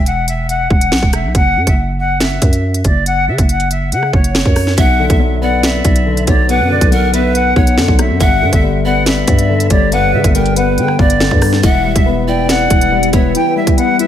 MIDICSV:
0, 0, Header, 1, 7, 480
1, 0, Start_track
1, 0, Key_signature, 2, "minor"
1, 0, Tempo, 428571
1, 1510, Time_signature, 4, 2, 24, 8
1, 15761, End_track
2, 0, Start_track
2, 0, Title_t, "Flute"
2, 0, Program_c, 0, 73
2, 71, Note_on_c, 0, 78, 89
2, 285, Note_off_c, 0, 78, 0
2, 310, Note_on_c, 0, 76, 82
2, 525, Note_off_c, 0, 76, 0
2, 550, Note_on_c, 0, 78, 89
2, 764, Note_off_c, 0, 78, 0
2, 790, Note_on_c, 0, 78, 77
2, 1241, Note_off_c, 0, 78, 0
2, 1269, Note_on_c, 0, 76, 81
2, 1484, Note_off_c, 0, 76, 0
2, 1509, Note_on_c, 0, 78, 106
2, 1848, Note_off_c, 0, 78, 0
2, 1870, Note_on_c, 0, 76, 75
2, 1977, Note_off_c, 0, 76, 0
2, 2229, Note_on_c, 0, 78, 82
2, 2444, Note_off_c, 0, 78, 0
2, 2469, Note_on_c, 0, 76, 77
2, 3146, Note_off_c, 0, 76, 0
2, 3189, Note_on_c, 0, 74, 85
2, 3404, Note_off_c, 0, 74, 0
2, 3430, Note_on_c, 0, 78, 113
2, 3645, Note_off_c, 0, 78, 0
2, 3670, Note_on_c, 0, 76, 82
2, 3885, Note_off_c, 0, 76, 0
2, 3912, Note_on_c, 0, 78, 78
2, 4126, Note_off_c, 0, 78, 0
2, 4151, Note_on_c, 0, 76, 73
2, 4365, Note_off_c, 0, 76, 0
2, 4390, Note_on_c, 0, 78, 92
2, 4605, Note_off_c, 0, 78, 0
2, 4630, Note_on_c, 0, 73, 83
2, 5307, Note_off_c, 0, 73, 0
2, 5351, Note_on_c, 0, 78, 111
2, 5689, Note_off_c, 0, 78, 0
2, 5709, Note_on_c, 0, 76, 77
2, 5817, Note_off_c, 0, 76, 0
2, 6069, Note_on_c, 0, 78, 88
2, 6284, Note_off_c, 0, 78, 0
2, 6310, Note_on_c, 0, 76, 90
2, 6987, Note_off_c, 0, 76, 0
2, 7030, Note_on_c, 0, 74, 89
2, 7245, Note_off_c, 0, 74, 0
2, 7270, Note_on_c, 0, 78, 108
2, 7485, Note_off_c, 0, 78, 0
2, 7511, Note_on_c, 0, 74, 89
2, 7725, Note_off_c, 0, 74, 0
2, 7750, Note_on_c, 0, 78, 93
2, 7965, Note_off_c, 0, 78, 0
2, 7990, Note_on_c, 0, 76, 84
2, 8205, Note_off_c, 0, 76, 0
2, 8230, Note_on_c, 0, 78, 97
2, 8445, Note_off_c, 0, 78, 0
2, 8471, Note_on_c, 0, 78, 83
2, 8922, Note_off_c, 0, 78, 0
2, 8951, Note_on_c, 0, 76, 83
2, 9165, Note_off_c, 0, 76, 0
2, 9191, Note_on_c, 0, 78, 116
2, 9529, Note_off_c, 0, 78, 0
2, 9551, Note_on_c, 0, 76, 88
2, 9658, Note_off_c, 0, 76, 0
2, 9911, Note_on_c, 0, 78, 84
2, 10125, Note_off_c, 0, 78, 0
2, 10150, Note_on_c, 0, 76, 77
2, 10827, Note_off_c, 0, 76, 0
2, 10870, Note_on_c, 0, 74, 87
2, 11085, Note_off_c, 0, 74, 0
2, 11110, Note_on_c, 0, 78, 116
2, 11324, Note_off_c, 0, 78, 0
2, 11350, Note_on_c, 0, 76, 87
2, 11565, Note_off_c, 0, 76, 0
2, 11590, Note_on_c, 0, 79, 86
2, 11805, Note_off_c, 0, 79, 0
2, 11830, Note_on_c, 0, 78, 81
2, 12045, Note_off_c, 0, 78, 0
2, 12071, Note_on_c, 0, 79, 87
2, 12285, Note_off_c, 0, 79, 0
2, 12310, Note_on_c, 0, 74, 96
2, 12987, Note_off_c, 0, 74, 0
2, 13030, Note_on_c, 0, 78, 112
2, 13368, Note_off_c, 0, 78, 0
2, 13391, Note_on_c, 0, 76, 83
2, 13498, Note_off_c, 0, 76, 0
2, 13750, Note_on_c, 0, 79, 84
2, 13965, Note_off_c, 0, 79, 0
2, 13990, Note_on_c, 0, 78, 99
2, 14667, Note_off_c, 0, 78, 0
2, 14710, Note_on_c, 0, 76, 87
2, 14925, Note_off_c, 0, 76, 0
2, 14950, Note_on_c, 0, 79, 115
2, 15165, Note_off_c, 0, 79, 0
2, 15189, Note_on_c, 0, 76, 90
2, 15404, Note_off_c, 0, 76, 0
2, 15429, Note_on_c, 0, 78, 94
2, 15644, Note_off_c, 0, 78, 0
2, 15671, Note_on_c, 0, 76, 84
2, 15761, Note_off_c, 0, 76, 0
2, 15761, End_track
3, 0, Start_track
3, 0, Title_t, "Pan flute"
3, 0, Program_c, 1, 75
3, 5349, Note_on_c, 1, 76, 116
3, 6026, Note_off_c, 1, 76, 0
3, 6070, Note_on_c, 1, 74, 81
3, 6985, Note_off_c, 1, 74, 0
3, 7031, Note_on_c, 1, 73, 82
3, 7259, Note_off_c, 1, 73, 0
3, 7269, Note_on_c, 1, 71, 110
3, 7721, Note_off_c, 1, 71, 0
3, 7751, Note_on_c, 1, 70, 102
3, 7978, Note_off_c, 1, 70, 0
3, 7989, Note_on_c, 1, 71, 94
3, 8441, Note_off_c, 1, 71, 0
3, 8469, Note_on_c, 1, 73, 85
3, 8697, Note_off_c, 1, 73, 0
3, 9189, Note_on_c, 1, 76, 116
3, 9866, Note_off_c, 1, 76, 0
3, 9910, Note_on_c, 1, 74, 84
3, 10825, Note_off_c, 1, 74, 0
3, 10869, Note_on_c, 1, 73, 80
3, 11098, Note_off_c, 1, 73, 0
3, 11111, Note_on_c, 1, 71, 114
3, 11562, Note_off_c, 1, 71, 0
3, 11591, Note_on_c, 1, 70, 85
3, 11819, Note_off_c, 1, 70, 0
3, 11832, Note_on_c, 1, 71, 93
3, 12282, Note_off_c, 1, 71, 0
3, 12310, Note_on_c, 1, 74, 74
3, 12538, Note_off_c, 1, 74, 0
3, 13030, Note_on_c, 1, 76, 114
3, 13707, Note_off_c, 1, 76, 0
3, 13749, Note_on_c, 1, 74, 86
3, 14665, Note_off_c, 1, 74, 0
3, 14710, Note_on_c, 1, 73, 75
3, 14938, Note_off_c, 1, 73, 0
3, 15761, End_track
4, 0, Start_track
4, 0, Title_t, "Ambient pad"
4, 0, Program_c, 2, 92
4, 13030, Note_on_c, 2, 59, 75
4, 13030, Note_on_c, 2, 64, 78
4, 13030, Note_on_c, 2, 71, 92
4, 13031, Note_on_c, 2, 55, 86
4, 15761, Note_off_c, 2, 55, 0
4, 15761, Note_off_c, 2, 59, 0
4, 15761, Note_off_c, 2, 64, 0
4, 15761, Note_off_c, 2, 71, 0
4, 15761, End_track
5, 0, Start_track
5, 0, Title_t, "Grand piano"
5, 0, Program_c, 3, 0
5, 5350, Note_on_c, 3, 47, 89
5, 5589, Control_c, 3, 64, 127
5, 5593, Note_on_c, 3, 50, 95
5, 5820, Note_on_c, 3, 54, 92
5, 6066, Note_on_c, 3, 59, 93
5, 6529, Note_off_c, 3, 47, 0
5, 6545, Note_on_c, 3, 47, 80
5, 6773, Note_off_c, 3, 50, 0
5, 6790, Note_on_c, 3, 50, 85
5, 7013, Note_off_c, 3, 54, 0
5, 7029, Note_on_c, 3, 54, 87
5, 7251, Note_off_c, 3, 47, 0
5, 7268, Note_off_c, 3, 59, 0
5, 7268, Note_on_c, 3, 47, 96
5, 7488, Note_off_c, 3, 50, 0
5, 7505, Note_on_c, 3, 50, 87
5, 7725, Note_off_c, 3, 54, 0
5, 7742, Note_on_c, 3, 54, 87
5, 7994, Note_on_c, 3, 59, 93
5, 8445, Note_off_c, 3, 47, 0
5, 8462, Note_on_c, 3, 47, 79
5, 8696, Note_off_c, 3, 50, 0
5, 8713, Note_on_c, 3, 50, 87
5, 8932, Note_off_c, 3, 54, 0
5, 8949, Note_on_c, 3, 54, 84
5, 9186, Note_off_c, 3, 47, 0
5, 9188, Note_on_c, 3, 43, 102
5, 9190, Note_off_c, 3, 54, 0
5, 9192, Note_off_c, 3, 50, 0
5, 9192, Note_off_c, 3, 59, 0
5, 9201, Control_c, 3, 64, 0
5, 9396, Control_c, 3, 64, 127
5, 9428, Note_on_c, 3, 50, 85
5, 9675, Note_on_c, 3, 55, 92
5, 9914, Note_on_c, 3, 59, 91
5, 10370, Note_off_c, 3, 43, 0
5, 10386, Note_on_c, 3, 43, 80
5, 10613, Note_off_c, 3, 50, 0
5, 10630, Note_on_c, 3, 50, 90
5, 10854, Note_off_c, 3, 55, 0
5, 10871, Note_on_c, 3, 55, 84
5, 11100, Note_off_c, 3, 43, 0
5, 11112, Note_off_c, 3, 59, 0
5, 11116, Note_on_c, 3, 43, 100
5, 11331, Note_off_c, 3, 50, 0
5, 11347, Note_on_c, 3, 50, 77
5, 11576, Note_off_c, 3, 55, 0
5, 11593, Note_on_c, 3, 55, 85
5, 11832, Note_on_c, 3, 59, 93
5, 12292, Note_off_c, 3, 43, 0
5, 12309, Note_on_c, 3, 43, 84
5, 12535, Note_off_c, 3, 50, 0
5, 12552, Note_on_c, 3, 50, 88
5, 12778, Note_off_c, 3, 55, 0
5, 12795, Note_on_c, 3, 55, 82
5, 13029, Note_on_c, 3, 52, 97
5, 13030, Note_off_c, 3, 43, 0
5, 13031, Note_off_c, 3, 50, 0
5, 13031, Note_off_c, 3, 59, 0
5, 13032, Note_off_c, 3, 55, 0
5, 13046, Control_c, 3, 64, 0
5, 13235, Control_c, 3, 64, 127
5, 13262, Note_on_c, 3, 55, 82
5, 13507, Note_on_c, 3, 59, 93
5, 13749, Note_on_c, 3, 64, 85
5, 14216, Note_off_c, 3, 52, 0
5, 14233, Note_on_c, 3, 52, 82
5, 14455, Note_off_c, 3, 55, 0
5, 14472, Note_on_c, 3, 55, 88
5, 14684, Note_off_c, 3, 59, 0
5, 14701, Note_on_c, 3, 59, 88
5, 14935, Note_off_c, 3, 52, 0
5, 14950, Note_off_c, 3, 64, 0
5, 14952, Note_on_c, 3, 52, 93
5, 15170, Note_off_c, 3, 55, 0
5, 15187, Note_on_c, 3, 55, 85
5, 15410, Note_off_c, 3, 59, 0
5, 15427, Note_on_c, 3, 59, 90
5, 15672, Note_on_c, 3, 64, 96
5, 15761, Note_off_c, 3, 52, 0
5, 15761, Note_off_c, 3, 55, 0
5, 15761, Note_off_c, 3, 59, 0
5, 15761, Note_off_c, 3, 64, 0
5, 15761, End_track
6, 0, Start_track
6, 0, Title_t, "808-style bass"
6, 0, Program_c, 4, 38
6, 0, Note_on_c, 4, 28, 99
6, 756, Note_off_c, 4, 28, 0
6, 789, Note_on_c, 4, 28, 109
6, 1030, Note_on_c, 4, 35, 92
6, 1047, Note_off_c, 4, 28, 0
6, 1144, Note_off_c, 4, 35, 0
6, 1149, Note_on_c, 4, 28, 108
6, 1390, Note_on_c, 4, 35, 102
6, 1407, Note_off_c, 4, 28, 0
6, 1504, Note_off_c, 4, 35, 0
6, 1510, Note_on_c, 4, 30, 108
6, 1751, Note_on_c, 4, 42, 103
6, 1768, Note_off_c, 4, 30, 0
6, 1864, Note_off_c, 4, 42, 0
6, 1870, Note_on_c, 4, 30, 105
6, 2677, Note_off_c, 4, 30, 0
6, 2710, Note_on_c, 4, 42, 105
6, 3171, Note_off_c, 4, 42, 0
6, 3189, Note_on_c, 4, 30, 106
6, 3669, Note_on_c, 4, 49, 105
6, 3686, Note_off_c, 4, 30, 0
6, 3783, Note_off_c, 4, 49, 0
6, 3790, Note_on_c, 4, 30, 106
6, 4389, Note_on_c, 4, 49, 100
6, 4406, Note_off_c, 4, 30, 0
6, 4618, Note_off_c, 4, 49, 0
6, 4630, Note_on_c, 4, 30, 108
6, 4975, Note_off_c, 4, 30, 0
6, 4989, Note_on_c, 4, 42, 105
6, 5335, Note_off_c, 4, 42, 0
6, 5350, Note_on_c, 4, 35, 113
6, 5696, Note_off_c, 4, 35, 0
6, 5711, Note_on_c, 4, 35, 102
6, 6517, Note_off_c, 4, 35, 0
6, 6550, Note_on_c, 4, 35, 104
6, 7011, Note_off_c, 4, 35, 0
6, 7029, Note_on_c, 4, 35, 105
6, 7390, Note_on_c, 4, 42, 100
6, 7407, Note_off_c, 4, 35, 0
6, 7618, Note_off_c, 4, 42, 0
6, 7631, Note_on_c, 4, 35, 101
6, 8437, Note_off_c, 4, 35, 0
6, 8470, Note_on_c, 4, 35, 109
6, 8710, Note_on_c, 4, 42, 99
6, 8726, Note_off_c, 4, 35, 0
6, 8824, Note_off_c, 4, 42, 0
6, 8829, Note_on_c, 4, 35, 111
6, 9069, Note_on_c, 4, 42, 100
6, 9086, Note_off_c, 4, 35, 0
6, 9184, Note_off_c, 4, 42, 0
6, 9190, Note_on_c, 4, 31, 109
6, 9429, Note_on_c, 4, 43, 100
6, 9446, Note_off_c, 4, 31, 0
6, 9544, Note_off_c, 4, 43, 0
6, 9551, Note_on_c, 4, 31, 107
6, 10357, Note_off_c, 4, 31, 0
6, 10390, Note_on_c, 4, 43, 108
6, 10851, Note_off_c, 4, 43, 0
6, 10869, Note_on_c, 4, 31, 108
6, 11351, Note_on_c, 4, 50, 102
6, 11367, Note_off_c, 4, 31, 0
6, 11464, Note_off_c, 4, 50, 0
6, 11471, Note_on_c, 4, 31, 109
6, 12070, Note_on_c, 4, 50, 102
6, 12087, Note_off_c, 4, 31, 0
6, 12298, Note_off_c, 4, 50, 0
6, 12310, Note_on_c, 4, 31, 106
6, 12655, Note_off_c, 4, 31, 0
6, 12669, Note_on_c, 4, 43, 106
6, 13015, Note_off_c, 4, 43, 0
6, 13031, Note_on_c, 4, 28, 116
6, 13376, Note_off_c, 4, 28, 0
6, 13391, Note_on_c, 4, 28, 101
6, 14197, Note_off_c, 4, 28, 0
6, 14230, Note_on_c, 4, 28, 102
6, 14691, Note_off_c, 4, 28, 0
6, 14709, Note_on_c, 4, 28, 103
6, 14940, Note_off_c, 4, 28, 0
6, 15761, End_track
7, 0, Start_track
7, 0, Title_t, "Drums"
7, 71, Note_on_c, 9, 42, 69
7, 183, Note_off_c, 9, 42, 0
7, 312, Note_on_c, 9, 42, 85
7, 424, Note_off_c, 9, 42, 0
7, 551, Note_on_c, 9, 42, 70
7, 663, Note_off_c, 9, 42, 0
7, 789, Note_on_c, 9, 36, 95
7, 901, Note_off_c, 9, 36, 0
7, 911, Note_on_c, 9, 42, 70
7, 1023, Note_off_c, 9, 42, 0
7, 1028, Note_on_c, 9, 38, 120
7, 1140, Note_off_c, 9, 38, 0
7, 1149, Note_on_c, 9, 36, 86
7, 1261, Note_off_c, 9, 36, 0
7, 1265, Note_on_c, 9, 42, 83
7, 1270, Note_on_c, 9, 37, 96
7, 1377, Note_off_c, 9, 42, 0
7, 1382, Note_off_c, 9, 37, 0
7, 1509, Note_on_c, 9, 42, 74
7, 1510, Note_on_c, 9, 36, 109
7, 1621, Note_off_c, 9, 42, 0
7, 1622, Note_off_c, 9, 36, 0
7, 1870, Note_on_c, 9, 36, 91
7, 1870, Note_on_c, 9, 42, 82
7, 1982, Note_off_c, 9, 36, 0
7, 1982, Note_off_c, 9, 42, 0
7, 2469, Note_on_c, 9, 38, 109
7, 2471, Note_on_c, 9, 42, 73
7, 2581, Note_off_c, 9, 38, 0
7, 2583, Note_off_c, 9, 42, 0
7, 2707, Note_on_c, 9, 42, 89
7, 2710, Note_on_c, 9, 36, 101
7, 2819, Note_off_c, 9, 42, 0
7, 2822, Note_off_c, 9, 36, 0
7, 2831, Note_on_c, 9, 42, 69
7, 2943, Note_off_c, 9, 42, 0
7, 3073, Note_on_c, 9, 42, 74
7, 3185, Note_off_c, 9, 42, 0
7, 3186, Note_on_c, 9, 42, 77
7, 3189, Note_on_c, 9, 36, 88
7, 3298, Note_off_c, 9, 42, 0
7, 3301, Note_off_c, 9, 36, 0
7, 3429, Note_on_c, 9, 42, 77
7, 3541, Note_off_c, 9, 42, 0
7, 3790, Note_on_c, 9, 42, 79
7, 3791, Note_on_c, 9, 36, 90
7, 3902, Note_off_c, 9, 42, 0
7, 3903, Note_off_c, 9, 36, 0
7, 3910, Note_on_c, 9, 42, 69
7, 4022, Note_off_c, 9, 42, 0
7, 4030, Note_on_c, 9, 42, 41
7, 4142, Note_off_c, 9, 42, 0
7, 4152, Note_on_c, 9, 42, 82
7, 4264, Note_off_c, 9, 42, 0
7, 4392, Note_on_c, 9, 42, 71
7, 4504, Note_off_c, 9, 42, 0
7, 4510, Note_on_c, 9, 37, 62
7, 4622, Note_off_c, 9, 37, 0
7, 4630, Note_on_c, 9, 36, 96
7, 4742, Note_off_c, 9, 36, 0
7, 4751, Note_on_c, 9, 42, 69
7, 4863, Note_off_c, 9, 42, 0
7, 4869, Note_on_c, 9, 38, 121
7, 4981, Note_off_c, 9, 38, 0
7, 4989, Note_on_c, 9, 36, 86
7, 5101, Note_off_c, 9, 36, 0
7, 5105, Note_on_c, 9, 46, 60
7, 5110, Note_on_c, 9, 37, 91
7, 5217, Note_off_c, 9, 46, 0
7, 5222, Note_off_c, 9, 37, 0
7, 5230, Note_on_c, 9, 38, 66
7, 5342, Note_off_c, 9, 38, 0
7, 5350, Note_on_c, 9, 36, 108
7, 5350, Note_on_c, 9, 42, 80
7, 5462, Note_off_c, 9, 36, 0
7, 5462, Note_off_c, 9, 42, 0
7, 5710, Note_on_c, 9, 42, 81
7, 5711, Note_on_c, 9, 36, 94
7, 5822, Note_off_c, 9, 42, 0
7, 5823, Note_off_c, 9, 36, 0
7, 6309, Note_on_c, 9, 38, 114
7, 6312, Note_on_c, 9, 42, 75
7, 6421, Note_off_c, 9, 38, 0
7, 6424, Note_off_c, 9, 42, 0
7, 6547, Note_on_c, 9, 42, 90
7, 6550, Note_on_c, 9, 36, 102
7, 6659, Note_off_c, 9, 42, 0
7, 6662, Note_off_c, 9, 36, 0
7, 6671, Note_on_c, 9, 42, 70
7, 6783, Note_off_c, 9, 42, 0
7, 6913, Note_on_c, 9, 42, 77
7, 7025, Note_off_c, 9, 42, 0
7, 7025, Note_on_c, 9, 42, 79
7, 7029, Note_on_c, 9, 36, 91
7, 7137, Note_off_c, 9, 42, 0
7, 7141, Note_off_c, 9, 36, 0
7, 7270, Note_on_c, 9, 42, 77
7, 7382, Note_off_c, 9, 42, 0
7, 7631, Note_on_c, 9, 36, 94
7, 7631, Note_on_c, 9, 42, 80
7, 7743, Note_off_c, 9, 36, 0
7, 7743, Note_off_c, 9, 42, 0
7, 7752, Note_on_c, 9, 42, 71
7, 7864, Note_off_c, 9, 42, 0
7, 7992, Note_on_c, 9, 42, 84
7, 8104, Note_off_c, 9, 42, 0
7, 8232, Note_on_c, 9, 42, 73
7, 8344, Note_off_c, 9, 42, 0
7, 8470, Note_on_c, 9, 36, 97
7, 8582, Note_off_c, 9, 36, 0
7, 8592, Note_on_c, 9, 42, 70
7, 8704, Note_off_c, 9, 42, 0
7, 8709, Note_on_c, 9, 38, 125
7, 8821, Note_off_c, 9, 38, 0
7, 8829, Note_on_c, 9, 36, 88
7, 8941, Note_off_c, 9, 36, 0
7, 8945, Note_on_c, 9, 42, 84
7, 8950, Note_on_c, 9, 37, 96
7, 9057, Note_off_c, 9, 42, 0
7, 9062, Note_off_c, 9, 37, 0
7, 9189, Note_on_c, 9, 42, 82
7, 9190, Note_on_c, 9, 36, 110
7, 9301, Note_off_c, 9, 42, 0
7, 9302, Note_off_c, 9, 36, 0
7, 9550, Note_on_c, 9, 42, 80
7, 9551, Note_on_c, 9, 36, 93
7, 9662, Note_off_c, 9, 42, 0
7, 9663, Note_off_c, 9, 36, 0
7, 10150, Note_on_c, 9, 38, 120
7, 10152, Note_on_c, 9, 42, 72
7, 10262, Note_off_c, 9, 38, 0
7, 10264, Note_off_c, 9, 42, 0
7, 10388, Note_on_c, 9, 42, 91
7, 10390, Note_on_c, 9, 36, 103
7, 10500, Note_off_c, 9, 42, 0
7, 10502, Note_off_c, 9, 36, 0
7, 10511, Note_on_c, 9, 42, 70
7, 10623, Note_off_c, 9, 42, 0
7, 10753, Note_on_c, 9, 42, 77
7, 10865, Note_off_c, 9, 42, 0
7, 10866, Note_on_c, 9, 42, 79
7, 10869, Note_on_c, 9, 36, 93
7, 10978, Note_off_c, 9, 42, 0
7, 10981, Note_off_c, 9, 36, 0
7, 11110, Note_on_c, 9, 42, 80
7, 11222, Note_off_c, 9, 42, 0
7, 11471, Note_on_c, 9, 36, 95
7, 11471, Note_on_c, 9, 42, 84
7, 11583, Note_off_c, 9, 36, 0
7, 11583, Note_off_c, 9, 42, 0
7, 11590, Note_on_c, 9, 42, 73
7, 11702, Note_off_c, 9, 42, 0
7, 11710, Note_on_c, 9, 42, 42
7, 11822, Note_off_c, 9, 42, 0
7, 11832, Note_on_c, 9, 42, 85
7, 11944, Note_off_c, 9, 42, 0
7, 12071, Note_on_c, 9, 42, 74
7, 12183, Note_off_c, 9, 42, 0
7, 12189, Note_on_c, 9, 37, 64
7, 12301, Note_off_c, 9, 37, 0
7, 12310, Note_on_c, 9, 36, 100
7, 12422, Note_off_c, 9, 36, 0
7, 12431, Note_on_c, 9, 42, 70
7, 12543, Note_off_c, 9, 42, 0
7, 12549, Note_on_c, 9, 38, 127
7, 12661, Note_off_c, 9, 38, 0
7, 12669, Note_on_c, 9, 36, 85
7, 12781, Note_off_c, 9, 36, 0
7, 12786, Note_on_c, 9, 46, 62
7, 12790, Note_on_c, 9, 37, 99
7, 12898, Note_off_c, 9, 46, 0
7, 12902, Note_off_c, 9, 37, 0
7, 12910, Note_on_c, 9, 38, 67
7, 13022, Note_off_c, 9, 38, 0
7, 13030, Note_on_c, 9, 36, 111
7, 13030, Note_on_c, 9, 42, 81
7, 13142, Note_off_c, 9, 36, 0
7, 13142, Note_off_c, 9, 42, 0
7, 13391, Note_on_c, 9, 36, 90
7, 13391, Note_on_c, 9, 42, 82
7, 13503, Note_off_c, 9, 36, 0
7, 13503, Note_off_c, 9, 42, 0
7, 13990, Note_on_c, 9, 38, 117
7, 13992, Note_on_c, 9, 42, 77
7, 14102, Note_off_c, 9, 38, 0
7, 14104, Note_off_c, 9, 42, 0
7, 14228, Note_on_c, 9, 42, 93
7, 14230, Note_on_c, 9, 36, 100
7, 14340, Note_off_c, 9, 42, 0
7, 14342, Note_off_c, 9, 36, 0
7, 14352, Note_on_c, 9, 42, 70
7, 14464, Note_off_c, 9, 42, 0
7, 14593, Note_on_c, 9, 42, 80
7, 14705, Note_off_c, 9, 42, 0
7, 14706, Note_on_c, 9, 42, 81
7, 14709, Note_on_c, 9, 36, 92
7, 14818, Note_off_c, 9, 42, 0
7, 14821, Note_off_c, 9, 36, 0
7, 14950, Note_on_c, 9, 42, 81
7, 15062, Note_off_c, 9, 42, 0
7, 15311, Note_on_c, 9, 36, 93
7, 15311, Note_on_c, 9, 42, 83
7, 15423, Note_off_c, 9, 36, 0
7, 15423, Note_off_c, 9, 42, 0
7, 15433, Note_on_c, 9, 42, 69
7, 15545, Note_off_c, 9, 42, 0
7, 15673, Note_on_c, 9, 42, 85
7, 15761, Note_off_c, 9, 42, 0
7, 15761, End_track
0, 0, End_of_file